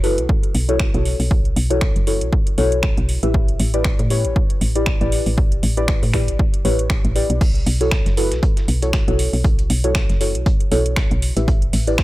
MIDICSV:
0, 0, Header, 1, 4, 480
1, 0, Start_track
1, 0, Key_signature, 2, "minor"
1, 0, Tempo, 508475
1, 1236, Time_signature, 4, 2, 24, 8
1, 11361, End_track
2, 0, Start_track
2, 0, Title_t, "Synth stab"
2, 0, Program_c, 0, 62
2, 34, Note_on_c, 0, 64, 88
2, 34, Note_on_c, 0, 66, 85
2, 34, Note_on_c, 0, 69, 83
2, 35, Note_on_c, 0, 71, 98
2, 617, Note_off_c, 0, 64, 0
2, 617, Note_off_c, 0, 66, 0
2, 617, Note_off_c, 0, 69, 0
2, 617, Note_off_c, 0, 71, 0
2, 648, Note_on_c, 0, 64, 73
2, 648, Note_on_c, 0, 66, 66
2, 649, Note_on_c, 0, 69, 67
2, 649, Note_on_c, 0, 73, 82
2, 857, Note_off_c, 0, 64, 0
2, 857, Note_off_c, 0, 66, 0
2, 857, Note_off_c, 0, 69, 0
2, 857, Note_off_c, 0, 73, 0
2, 889, Note_on_c, 0, 64, 87
2, 889, Note_on_c, 0, 66, 78
2, 889, Note_on_c, 0, 69, 80
2, 890, Note_on_c, 0, 73, 94
2, 1577, Note_off_c, 0, 64, 0
2, 1577, Note_off_c, 0, 66, 0
2, 1577, Note_off_c, 0, 69, 0
2, 1578, Note_off_c, 0, 73, 0
2, 1608, Note_on_c, 0, 64, 87
2, 1608, Note_on_c, 0, 66, 83
2, 1608, Note_on_c, 0, 69, 80
2, 1609, Note_on_c, 0, 73, 97
2, 1929, Note_off_c, 0, 64, 0
2, 1929, Note_off_c, 0, 66, 0
2, 1929, Note_off_c, 0, 69, 0
2, 1930, Note_off_c, 0, 73, 0
2, 1955, Note_on_c, 0, 64, 82
2, 1955, Note_on_c, 0, 66, 78
2, 1955, Note_on_c, 0, 69, 78
2, 1955, Note_on_c, 0, 73, 92
2, 2226, Note_off_c, 0, 64, 0
2, 2226, Note_off_c, 0, 66, 0
2, 2227, Note_off_c, 0, 69, 0
2, 2227, Note_off_c, 0, 73, 0
2, 2434, Note_on_c, 0, 64, 101
2, 2434, Note_on_c, 0, 66, 93
2, 2434, Note_on_c, 0, 69, 92
2, 2435, Note_on_c, 0, 73, 109
2, 3017, Note_off_c, 0, 64, 0
2, 3017, Note_off_c, 0, 66, 0
2, 3017, Note_off_c, 0, 69, 0
2, 3017, Note_off_c, 0, 73, 0
2, 3048, Note_on_c, 0, 64, 88
2, 3048, Note_on_c, 0, 67, 78
2, 3049, Note_on_c, 0, 71, 79
2, 3049, Note_on_c, 0, 76, 97
2, 3497, Note_off_c, 0, 64, 0
2, 3497, Note_off_c, 0, 67, 0
2, 3497, Note_off_c, 0, 71, 0
2, 3497, Note_off_c, 0, 76, 0
2, 3528, Note_on_c, 0, 67, 69
2, 3529, Note_on_c, 0, 64, 78
2, 3529, Note_on_c, 0, 71, 70
2, 3529, Note_on_c, 0, 74, 84
2, 3850, Note_off_c, 0, 64, 0
2, 3850, Note_off_c, 0, 67, 0
2, 3850, Note_off_c, 0, 71, 0
2, 3850, Note_off_c, 0, 74, 0
2, 3874, Note_on_c, 0, 64, 91
2, 3874, Note_on_c, 0, 67, 82
2, 3875, Note_on_c, 0, 71, 82
2, 3875, Note_on_c, 0, 73, 96
2, 4457, Note_off_c, 0, 64, 0
2, 4457, Note_off_c, 0, 67, 0
2, 4457, Note_off_c, 0, 71, 0
2, 4457, Note_off_c, 0, 73, 0
2, 4489, Note_on_c, 0, 64, 71
2, 4489, Note_on_c, 0, 67, 67
2, 4490, Note_on_c, 0, 71, 66
2, 4490, Note_on_c, 0, 74, 78
2, 4697, Note_off_c, 0, 64, 0
2, 4697, Note_off_c, 0, 67, 0
2, 4698, Note_off_c, 0, 71, 0
2, 4698, Note_off_c, 0, 74, 0
2, 4729, Note_on_c, 0, 64, 85
2, 4729, Note_on_c, 0, 67, 77
2, 4730, Note_on_c, 0, 71, 81
2, 4731, Note_on_c, 0, 74, 94
2, 5417, Note_off_c, 0, 64, 0
2, 5418, Note_off_c, 0, 67, 0
2, 5418, Note_off_c, 0, 71, 0
2, 5418, Note_off_c, 0, 74, 0
2, 5449, Note_on_c, 0, 64, 94
2, 5449, Note_on_c, 0, 67, 86
2, 5449, Note_on_c, 0, 71, 84
2, 5449, Note_on_c, 0, 74, 100
2, 5770, Note_off_c, 0, 64, 0
2, 5770, Note_off_c, 0, 67, 0
2, 5770, Note_off_c, 0, 71, 0
2, 5770, Note_off_c, 0, 74, 0
2, 5795, Note_on_c, 0, 64, 87
2, 5795, Note_on_c, 0, 67, 79
2, 5795, Note_on_c, 0, 71, 75
2, 5795, Note_on_c, 0, 74, 90
2, 6066, Note_off_c, 0, 64, 0
2, 6067, Note_off_c, 0, 67, 0
2, 6067, Note_off_c, 0, 71, 0
2, 6067, Note_off_c, 0, 74, 0
2, 6274, Note_on_c, 0, 64, 92
2, 6274, Note_on_c, 0, 67, 83
2, 6275, Note_on_c, 0, 71, 84
2, 6275, Note_on_c, 0, 73, 103
2, 6730, Note_off_c, 0, 64, 0
2, 6730, Note_off_c, 0, 67, 0
2, 6730, Note_off_c, 0, 71, 0
2, 6730, Note_off_c, 0, 73, 0
2, 6754, Note_on_c, 0, 64, 89
2, 6755, Note_on_c, 0, 67, 77
2, 6755, Note_on_c, 0, 71, 77
2, 6755, Note_on_c, 0, 74, 94
2, 6982, Note_off_c, 0, 64, 0
2, 6983, Note_off_c, 0, 67, 0
2, 6983, Note_off_c, 0, 71, 0
2, 6983, Note_off_c, 0, 74, 0
2, 7369, Note_on_c, 0, 64, 80
2, 7369, Note_on_c, 0, 66, 72
2, 7370, Note_on_c, 0, 69, 70
2, 7370, Note_on_c, 0, 73, 83
2, 7690, Note_off_c, 0, 64, 0
2, 7690, Note_off_c, 0, 66, 0
2, 7690, Note_off_c, 0, 69, 0
2, 7690, Note_off_c, 0, 73, 0
2, 7715, Note_on_c, 0, 64, 90
2, 7715, Note_on_c, 0, 66, 80
2, 7716, Note_on_c, 0, 69, 81
2, 7716, Note_on_c, 0, 71, 96
2, 8297, Note_off_c, 0, 64, 0
2, 8298, Note_off_c, 0, 66, 0
2, 8298, Note_off_c, 0, 69, 0
2, 8298, Note_off_c, 0, 71, 0
2, 8329, Note_on_c, 0, 64, 73
2, 8329, Note_on_c, 0, 66, 66
2, 8330, Note_on_c, 0, 69, 65
2, 8330, Note_on_c, 0, 73, 84
2, 8537, Note_off_c, 0, 64, 0
2, 8537, Note_off_c, 0, 66, 0
2, 8538, Note_off_c, 0, 69, 0
2, 8538, Note_off_c, 0, 73, 0
2, 8570, Note_on_c, 0, 64, 85
2, 8570, Note_on_c, 0, 66, 82
2, 8571, Note_on_c, 0, 69, 76
2, 8571, Note_on_c, 0, 73, 94
2, 9258, Note_off_c, 0, 64, 0
2, 9258, Note_off_c, 0, 66, 0
2, 9258, Note_off_c, 0, 69, 0
2, 9258, Note_off_c, 0, 73, 0
2, 9290, Note_on_c, 0, 64, 91
2, 9290, Note_on_c, 0, 66, 81
2, 9290, Note_on_c, 0, 69, 85
2, 9290, Note_on_c, 0, 73, 98
2, 9610, Note_off_c, 0, 64, 0
2, 9610, Note_off_c, 0, 66, 0
2, 9610, Note_off_c, 0, 73, 0
2, 9611, Note_off_c, 0, 69, 0
2, 9634, Note_on_c, 0, 64, 86
2, 9634, Note_on_c, 0, 66, 75
2, 9635, Note_on_c, 0, 69, 78
2, 9635, Note_on_c, 0, 73, 92
2, 9906, Note_off_c, 0, 64, 0
2, 9906, Note_off_c, 0, 66, 0
2, 9906, Note_off_c, 0, 69, 0
2, 9907, Note_off_c, 0, 73, 0
2, 10114, Note_on_c, 0, 64, 100
2, 10114, Note_on_c, 0, 66, 95
2, 10115, Note_on_c, 0, 69, 92
2, 10116, Note_on_c, 0, 73, 108
2, 10697, Note_off_c, 0, 64, 0
2, 10697, Note_off_c, 0, 66, 0
2, 10698, Note_off_c, 0, 69, 0
2, 10698, Note_off_c, 0, 73, 0
2, 10729, Note_on_c, 0, 64, 85
2, 10729, Note_on_c, 0, 67, 77
2, 10729, Note_on_c, 0, 71, 79
2, 10730, Note_on_c, 0, 76, 93
2, 11177, Note_off_c, 0, 64, 0
2, 11177, Note_off_c, 0, 67, 0
2, 11178, Note_off_c, 0, 71, 0
2, 11178, Note_off_c, 0, 76, 0
2, 11209, Note_on_c, 0, 64, 78
2, 11209, Note_on_c, 0, 67, 72
2, 11209, Note_on_c, 0, 71, 75
2, 11210, Note_on_c, 0, 74, 90
2, 11361, Note_off_c, 0, 64, 0
2, 11361, Note_off_c, 0, 67, 0
2, 11361, Note_off_c, 0, 71, 0
2, 11361, Note_off_c, 0, 74, 0
2, 11361, End_track
3, 0, Start_track
3, 0, Title_t, "FM bass"
3, 0, Program_c, 1, 39
3, 0, Note_on_c, 1, 30, 83
3, 169, Note_on_c, 1, 35, 84
3, 183, Note_off_c, 1, 30, 0
3, 255, Note_off_c, 1, 35, 0
3, 516, Note_on_c, 1, 35, 87
3, 850, Note_off_c, 1, 35, 0
3, 890, Note_on_c, 1, 35, 104
3, 1079, Note_off_c, 1, 35, 0
3, 1130, Note_on_c, 1, 35, 88
3, 1444, Note_off_c, 1, 35, 0
3, 1476, Note_on_c, 1, 35, 99
3, 1810, Note_off_c, 1, 35, 0
3, 1850, Note_on_c, 1, 30, 80
3, 2091, Note_on_c, 1, 35, 89
3, 2105, Note_off_c, 1, 30, 0
3, 2176, Note_off_c, 1, 35, 0
3, 2436, Note_on_c, 1, 35, 89
3, 2770, Note_off_c, 1, 35, 0
3, 2809, Note_on_c, 1, 35, 98
3, 2999, Note_off_c, 1, 35, 0
3, 3049, Note_on_c, 1, 33, 89
3, 3364, Note_off_c, 1, 33, 0
3, 3395, Note_on_c, 1, 33, 101
3, 3729, Note_off_c, 1, 33, 0
3, 3769, Note_on_c, 1, 45, 82
3, 4009, Note_on_c, 1, 33, 84
3, 4024, Note_off_c, 1, 45, 0
3, 4096, Note_off_c, 1, 33, 0
3, 4354, Note_on_c, 1, 33, 85
3, 4689, Note_off_c, 1, 33, 0
3, 4729, Note_on_c, 1, 33, 99
3, 4919, Note_off_c, 1, 33, 0
3, 4969, Note_on_c, 1, 33, 88
3, 5283, Note_off_c, 1, 33, 0
3, 5315, Note_on_c, 1, 33, 97
3, 5649, Note_off_c, 1, 33, 0
3, 5690, Note_on_c, 1, 45, 81
3, 5930, Note_on_c, 1, 33, 89
3, 5944, Note_off_c, 1, 45, 0
3, 6016, Note_off_c, 1, 33, 0
3, 6276, Note_on_c, 1, 33, 86
3, 6610, Note_off_c, 1, 33, 0
3, 6650, Note_on_c, 1, 33, 99
3, 6840, Note_off_c, 1, 33, 0
3, 6890, Note_on_c, 1, 35, 92
3, 7204, Note_off_c, 1, 35, 0
3, 7235, Note_on_c, 1, 35, 98
3, 7570, Note_off_c, 1, 35, 0
3, 7610, Note_on_c, 1, 30, 82
3, 7850, Note_on_c, 1, 35, 87
3, 7864, Note_off_c, 1, 30, 0
3, 7936, Note_off_c, 1, 35, 0
3, 8195, Note_on_c, 1, 35, 86
3, 8529, Note_off_c, 1, 35, 0
3, 8570, Note_on_c, 1, 35, 102
3, 8760, Note_off_c, 1, 35, 0
3, 8811, Note_on_c, 1, 35, 89
3, 9124, Note_off_c, 1, 35, 0
3, 9157, Note_on_c, 1, 35, 97
3, 9490, Note_off_c, 1, 35, 0
3, 9531, Note_on_c, 1, 30, 79
3, 9771, Note_on_c, 1, 35, 86
3, 9785, Note_off_c, 1, 30, 0
3, 9856, Note_off_c, 1, 35, 0
3, 10116, Note_on_c, 1, 35, 86
3, 10450, Note_off_c, 1, 35, 0
3, 10491, Note_on_c, 1, 35, 99
3, 10680, Note_off_c, 1, 35, 0
3, 10730, Note_on_c, 1, 33, 93
3, 11044, Note_off_c, 1, 33, 0
3, 11076, Note_on_c, 1, 33, 97
3, 11361, Note_off_c, 1, 33, 0
3, 11361, End_track
4, 0, Start_track
4, 0, Title_t, "Drums"
4, 35, Note_on_c, 9, 46, 100
4, 130, Note_off_c, 9, 46, 0
4, 170, Note_on_c, 9, 42, 62
4, 264, Note_off_c, 9, 42, 0
4, 276, Note_on_c, 9, 36, 114
4, 370, Note_off_c, 9, 36, 0
4, 410, Note_on_c, 9, 42, 50
4, 504, Note_off_c, 9, 42, 0
4, 515, Note_on_c, 9, 46, 101
4, 609, Note_off_c, 9, 46, 0
4, 650, Note_on_c, 9, 42, 58
4, 744, Note_off_c, 9, 42, 0
4, 751, Note_on_c, 9, 26, 108
4, 756, Note_on_c, 9, 36, 116
4, 845, Note_off_c, 9, 26, 0
4, 850, Note_off_c, 9, 36, 0
4, 890, Note_on_c, 9, 42, 35
4, 985, Note_off_c, 9, 42, 0
4, 996, Note_on_c, 9, 46, 101
4, 1090, Note_off_c, 9, 46, 0
4, 1130, Note_on_c, 9, 46, 63
4, 1225, Note_off_c, 9, 46, 0
4, 1236, Note_on_c, 9, 36, 111
4, 1330, Note_off_c, 9, 36, 0
4, 1371, Note_on_c, 9, 42, 36
4, 1465, Note_off_c, 9, 42, 0
4, 1477, Note_on_c, 9, 46, 100
4, 1571, Note_off_c, 9, 46, 0
4, 1610, Note_on_c, 9, 42, 62
4, 1704, Note_off_c, 9, 42, 0
4, 1711, Note_on_c, 9, 26, 109
4, 1716, Note_on_c, 9, 36, 113
4, 1806, Note_off_c, 9, 26, 0
4, 1810, Note_off_c, 9, 36, 0
4, 1850, Note_on_c, 9, 42, 52
4, 1944, Note_off_c, 9, 42, 0
4, 1955, Note_on_c, 9, 46, 98
4, 2049, Note_off_c, 9, 46, 0
4, 2089, Note_on_c, 9, 42, 63
4, 2184, Note_off_c, 9, 42, 0
4, 2196, Note_on_c, 9, 36, 114
4, 2290, Note_off_c, 9, 36, 0
4, 2329, Note_on_c, 9, 42, 51
4, 2423, Note_off_c, 9, 42, 0
4, 2434, Note_on_c, 9, 46, 99
4, 2528, Note_off_c, 9, 46, 0
4, 2568, Note_on_c, 9, 42, 60
4, 2663, Note_off_c, 9, 42, 0
4, 2670, Note_on_c, 9, 26, 108
4, 2676, Note_on_c, 9, 36, 109
4, 2764, Note_off_c, 9, 26, 0
4, 2770, Note_off_c, 9, 36, 0
4, 2808, Note_on_c, 9, 42, 35
4, 2903, Note_off_c, 9, 42, 0
4, 2914, Note_on_c, 9, 46, 97
4, 3009, Note_off_c, 9, 46, 0
4, 3049, Note_on_c, 9, 42, 67
4, 3143, Note_off_c, 9, 42, 0
4, 3156, Note_on_c, 9, 36, 106
4, 3250, Note_off_c, 9, 36, 0
4, 3289, Note_on_c, 9, 42, 38
4, 3383, Note_off_c, 9, 42, 0
4, 3394, Note_on_c, 9, 46, 100
4, 3488, Note_off_c, 9, 46, 0
4, 3528, Note_on_c, 9, 42, 65
4, 3623, Note_off_c, 9, 42, 0
4, 3629, Note_on_c, 9, 26, 117
4, 3636, Note_on_c, 9, 36, 112
4, 3724, Note_off_c, 9, 26, 0
4, 3730, Note_off_c, 9, 36, 0
4, 3769, Note_on_c, 9, 42, 53
4, 3863, Note_off_c, 9, 42, 0
4, 3874, Note_on_c, 9, 46, 97
4, 3968, Note_off_c, 9, 46, 0
4, 4008, Note_on_c, 9, 42, 67
4, 4103, Note_off_c, 9, 42, 0
4, 4116, Note_on_c, 9, 36, 110
4, 4210, Note_off_c, 9, 36, 0
4, 4248, Note_on_c, 9, 42, 52
4, 4343, Note_off_c, 9, 42, 0
4, 4354, Note_on_c, 9, 46, 99
4, 4448, Note_off_c, 9, 46, 0
4, 4489, Note_on_c, 9, 42, 65
4, 4583, Note_off_c, 9, 42, 0
4, 4590, Note_on_c, 9, 26, 116
4, 4596, Note_on_c, 9, 36, 108
4, 4684, Note_off_c, 9, 26, 0
4, 4690, Note_off_c, 9, 36, 0
4, 4730, Note_on_c, 9, 42, 38
4, 4824, Note_off_c, 9, 42, 0
4, 4835, Note_on_c, 9, 46, 96
4, 4929, Note_off_c, 9, 46, 0
4, 4969, Note_on_c, 9, 46, 61
4, 5063, Note_off_c, 9, 46, 0
4, 5076, Note_on_c, 9, 36, 111
4, 5170, Note_off_c, 9, 36, 0
4, 5209, Note_on_c, 9, 42, 38
4, 5304, Note_off_c, 9, 42, 0
4, 5315, Note_on_c, 9, 46, 101
4, 5409, Note_off_c, 9, 46, 0
4, 5450, Note_on_c, 9, 42, 64
4, 5544, Note_off_c, 9, 42, 0
4, 5551, Note_on_c, 9, 26, 115
4, 5556, Note_on_c, 9, 36, 113
4, 5645, Note_off_c, 9, 26, 0
4, 5650, Note_off_c, 9, 36, 0
4, 5690, Note_on_c, 9, 46, 57
4, 5785, Note_off_c, 9, 46, 0
4, 5792, Note_on_c, 9, 26, 60
4, 5796, Note_on_c, 9, 36, 58
4, 5796, Note_on_c, 9, 46, 93
4, 5886, Note_off_c, 9, 26, 0
4, 5890, Note_off_c, 9, 36, 0
4, 5891, Note_off_c, 9, 46, 0
4, 5930, Note_on_c, 9, 42, 69
4, 6025, Note_off_c, 9, 42, 0
4, 6036, Note_on_c, 9, 36, 114
4, 6130, Note_off_c, 9, 36, 0
4, 6171, Note_on_c, 9, 42, 55
4, 6265, Note_off_c, 9, 42, 0
4, 6276, Note_on_c, 9, 46, 95
4, 6371, Note_off_c, 9, 46, 0
4, 6411, Note_on_c, 9, 42, 68
4, 6505, Note_off_c, 9, 42, 0
4, 6512, Note_on_c, 9, 26, 119
4, 6516, Note_on_c, 9, 36, 115
4, 6606, Note_off_c, 9, 26, 0
4, 6610, Note_off_c, 9, 36, 0
4, 6651, Note_on_c, 9, 42, 40
4, 6746, Note_off_c, 9, 42, 0
4, 6756, Note_on_c, 9, 46, 94
4, 6850, Note_off_c, 9, 46, 0
4, 6891, Note_on_c, 9, 42, 71
4, 6985, Note_off_c, 9, 42, 0
4, 6996, Note_on_c, 9, 36, 114
4, 6996, Note_on_c, 9, 42, 87
4, 6997, Note_on_c, 9, 49, 75
4, 7090, Note_off_c, 9, 36, 0
4, 7090, Note_off_c, 9, 42, 0
4, 7091, Note_off_c, 9, 49, 0
4, 7131, Note_on_c, 9, 42, 38
4, 7225, Note_off_c, 9, 42, 0
4, 7236, Note_on_c, 9, 46, 105
4, 7330, Note_off_c, 9, 46, 0
4, 7371, Note_on_c, 9, 42, 66
4, 7465, Note_off_c, 9, 42, 0
4, 7471, Note_on_c, 9, 26, 122
4, 7475, Note_on_c, 9, 38, 113
4, 7475, Note_on_c, 9, 42, 87
4, 7476, Note_on_c, 9, 36, 118
4, 7566, Note_off_c, 9, 26, 0
4, 7570, Note_off_c, 9, 36, 0
4, 7570, Note_off_c, 9, 38, 0
4, 7570, Note_off_c, 9, 42, 0
4, 7609, Note_on_c, 9, 38, 57
4, 7610, Note_on_c, 9, 42, 55
4, 7704, Note_off_c, 9, 38, 0
4, 7705, Note_off_c, 9, 42, 0
4, 7715, Note_on_c, 9, 42, 65
4, 7716, Note_on_c, 9, 46, 103
4, 7810, Note_off_c, 9, 42, 0
4, 7810, Note_off_c, 9, 46, 0
4, 7850, Note_on_c, 9, 38, 50
4, 7851, Note_on_c, 9, 42, 70
4, 7944, Note_off_c, 9, 38, 0
4, 7945, Note_off_c, 9, 42, 0
4, 7955, Note_on_c, 9, 42, 87
4, 7956, Note_on_c, 9, 36, 118
4, 8050, Note_off_c, 9, 36, 0
4, 8050, Note_off_c, 9, 42, 0
4, 8090, Note_on_c, 9, 38, 50
4, 8090, Note_on_c, 9, 42, 52
4, 8185, Note_off_c, 9, 38, 0
4, 8185, Note_off_c, 9, 42, 0
4, 8196, Note_on_c, 9, 42, 65
4, 8196, Note_on_c, 9, 46, 100
4, 8290, Note_off_c, 9, 42, 0
4, 8290, Note_off_c, 9, 46, 0
4, 8330, Note_on_c, 9, 42, 43
4, 8331, Note_off_c, 9, 42, 0
4, 8331, Note_on_c, 9, 42, 67
4, 8425, Note_off_c, 9, 42, 0
4, 8432, Note_on_c, 9, 26, 125
4, 8435, Note_on_c, 9, 38, 116
4, 8435, Note_on_c, 9, 42, 90
4, 8436, Note_on_c, 9, 36, 115
4, 8526, Note_off_c, 9, 26, 0
4, 8529, Note_off_c, 9, 38, 0
4, 8529, Note_off_c, 9, 42, 0
4, 8530, Note_off_c, 9, 36, 0
4, 8571, Note_on_c, 9, 42, 39
4, 8665, Note_off_c, 9, 42, 0
4, 8675, Note_on_c, 9, 42, 69
4, 8676, Note_on_c, 9, 46, 101
4, 8770, Note_off_c, 9, 42, 0
4, 8771, Note_off_c, 9, 46, 0
4, 8811, Note_on_c, 9, 46, 64
4, 8905, Note_off_c, 9, 46, 0
4, 8916, Note_on_c, 9, 36, 116
4, 8916, Note_on_c, 9, 42, 85
4, 9010, Note_off_c, 9, 36, 0
4, 9010, Note_off_c, 9, 42, 0
4, 9050, Note_on_c, 9, 42, 42
4, 9051, Note_off_c, 9, 42, 0
4, 9051, Note_on_c, 9, 42, 38
4, 9145, Note_off_c, 9, 42, 0
4, 9156, Note_on_c, 9, 42, 67
4, 9156, Note_on_c, 9, 46, 110
4, 9250, Note_off_c, 9, 42, 0
4, 9251, Note_off_c, 9, 46, 0
4, 9290, Note_on_c, 9, 42, 65
4, 9384, Note_off_c, 9, 42, 0
4, 9391, Note_on_c, 9, 26, 123
4, 9396, Note_on_c, 9, 36, 122
4, 9396, Note_on_c, 9, 38, 120
4, 9396, Note_on_c, 9, 42, 91
4, 9485, Note_off_c, 9, 26, 0
4, 9490, Note_off_c, 9, 36, 0
4, 9491, Note_off_c, 9, 38, 0
4, 9491, Note_off_c, 9, 42, 0
4, 9530, Note_on_c, 9, 42, 52
4, 9531, Note_on_c, 9, 38, 44
4, 9624, Note_off_c, 9, 42, 0
4, 9625, Note_off_c, 9, 38, 0
4, 9636, Note_on_c, 9, 46, 106
4, 9637, Note_on_c, 9, 42, 67
4, 9730, Note_off_c, 9, 46, 0
4, 9731, Note_off_c, 9, 42, 0
4, 9771, Note_on_c, 9, 42, 66
4, 9865, Note_off_c, 9, 42, 0
4, 9876, Note_on_c, 9, 36, 123
4, 9876, Note_on_c, 9, 42, 92
4, 9970, Note_off_c, 9, 36, 0
4, 9971, Note_off_c, 9, 42, 0
4, 10010, Note_on_c, 9, 42, 51
4, 10105, Note_off_c, 9, 42, 0
4, 10116, Note_on_c, 9, 46, 109
4, 10117, Note_on_c, 9, 42, 68
4, 10210, Note_off_c, 9, 46, 0
4, 10211, Note_off_c, 9, 42, 0
4, 10250, Note_on_c, 9, 42, 62
4, 10344, Note_off_c, 9, 42, 0
4, 10350, Note_on_c, 9, 26, 127
4, 10356, Note_on_c, 9, 36, 122
4, 10356, Note_on_c, 9, 38, 120
4, 10356, Note_on_c, 9, 42, 86
4, 10445, Note_off_c, 9, 26, 0
4, 10450, Note_off_c, 9, 36, 0
4, 10451, Note_off_c, 9, 38, 0
4, 10451, Note_off_c, 9, 42, 0
4, 10490, Note_on_c, 9, 42, 37
4, 10584, Note_off_c, 9, 42, 0
4, 10595, Note_on_c, 9, 46, 106
4, 10596, Note_on_c, 9, 42, 71
4, 10689, Note_off_c, 9, 46, 0
4, 10691, Note_off_c, 9, 42, 0
4, 10730, Note_on_c, 9, 42, 44
4, 10825, Note_off_c, 9, 42, 0
4, 10836, Note_on_c, 9, 36, 117
4, 10836, Note_on_c, 9, 42, 88
4, 10931, Note_off_c, 9, 36, 0
4, 10931, Note_off_c, 9, 42, 0
4, 10969, Note_on_c, 9, 42, 36
4, 11064, Note_off_c, 9, 42, 0
4, 11075, Note_on_c, 9, 46, 111
4, 11076, Note_off_c, 9, 46, 0
4, 11076, Note_on_c, 9, 46, 77
4, 11170, Note_off_c, 9, 46, 0
4, 11209, Note_on_c, 9, 42, 63
4, 11304, Note_off_c, 9, 42, 0
4, 11310, Note_on_c, 9, 26, 121
4, 11316, Note_on_c, 9, 36, 123
4, 11316, Note_on_c, 9, 38, 115
4, 11316, Note_on_c, 9, 42, 86
4, 11361, Note_off_c, 9, 26, 0
4, 11361, Note_off_c, 9, 36, 0
4, 11361, Note_off_c, 9, 38, 0
4, 11361, Note_off_c, 9, 42, 0
4, 11361, End_track
0, 0, End_of_file